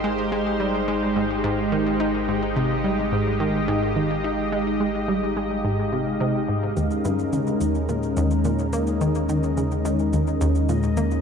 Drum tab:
SH |----------------|----------------|----------------|xxxxxxxxxxxxxxxx|
T1 |----------------|----------------|----------------|o-o-o-o-o-o-o-o-|

SH |xxxxxxxxxxxxxxxx|
T1 |o-o-o-o-o-o-o-o-|